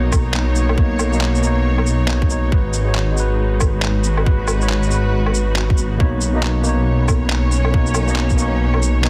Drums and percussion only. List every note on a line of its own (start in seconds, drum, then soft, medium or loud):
0.12 kick loud
0.12 low woodblock medium
0.12 shaker medium
0.34 clap loud
0.55 shaker medium
0.69 low woodblock medium
0.78 kick loud
0.99 low woodblock medium
0.99 shaker medium
1.13 shaker soft
1.21 clap loud
1.35 shaker soft
1.43 shaker soft
1.78 low woodblock soft
1.86 shaker medium
2.08 clap loud
2.22 kick loud
2.30 shaker medium
2.52 kick loud
2.73 shaker medium
2.95 clap loud
3.17 shaker medium
3.60 kick loud
3.60 low woodblock medium
3.60 shaker medium
3.82 clap loud
4.04 shaker soft
4.17 low woodblock medium
4.26 kick loud
4.48 low woodblock medium
4.48 shaker medium
4.61 shaker soft
4.69 clap loud
4.83 shaker soft
4.91 shaker soft
5.26 low woodblock medium
5.34 shaker medium
5.56 clap loud
5.70 kick loud
5.77 shaker soft
6.00 kick loud
6.21 shaker medium
6.43 clap medium
6.64 shaker medium
7.08 kick medium
7.08 low woodblock medium
7.08 shaker medium
7.30 clap medium
7.52 shaker medium
7.65 low woodblock medium
7.74 kick loud
7.86 shaker soft
7.94 low woodblock medium
7.94 shaker medium
8.08 shaker soft
8.16 clap loud
8.29 kick medium
8.29 shaker soft
8.38 shaker medium
8.74 low woodblock medium
8.82 shaker medium
9.04 clap loud